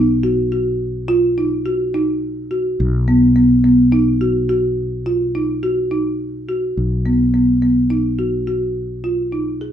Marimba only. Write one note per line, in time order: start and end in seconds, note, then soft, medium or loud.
0.00 0.20 D#4 medium
0.23 0.48 F#4 medium
0.52 1.02 F#4 medium
1.08 1.33 F4 medium
1.38 1.62 D#4 medium
1.66 1.91 F#4 medium
1.94 2.44 D#4 medium
2.51 2.76 F#4 medium
3.08 3.33 B3 medium
3.36 3.61 B3 medium
3.64 3.89 B3 medium
3.92 4.17 D#4 medium
4.21 4.46 F#4 medium
4.49 4.99 F#4 medium
5.06 5.31 F4 medium
5.35 5.60 D#4 medium
5.63 5.88 F#4 medium
5.91 6.41 D#4 medium
6.49 6.74 F#4 medium
7.06 7.31 B3 medium
7.34 7.59 B3 medium
7.62 7.87 B3 medium
7.90 8.16 D#4 medium
8.19 8.44 F#4 medium
8.47 8.97 F#4 medium
9.04 9.29 F4 medium
9.32 9.58 D#4 medium
9.61 9.72 G#4 medium